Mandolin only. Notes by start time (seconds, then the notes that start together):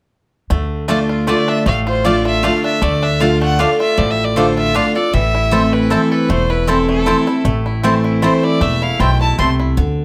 0.88 A3 F4 D5 A5
1.27 A3 F4 D5 A5
2.04 A3 F4 D5 A5
2.43 A3 F4 D5 A5
3.20 A3 F4 D5 A5
3.59 A3 F4 D5 A5
4.36 A3 F4 D5 A5
4.74 A3 F4 D5 A5
5.52 C4 E4 C5 A5
5.90 C4 E4 C5 A5
6.67 C4 E4 C5 A5
7.06 C4 E4 C5 A5
7.83 C4 E4 C5 A5
8.22 C4 E4 C5 A5
8.99 C4 E4 C5 A5
9.38 C4 E4 C5 A5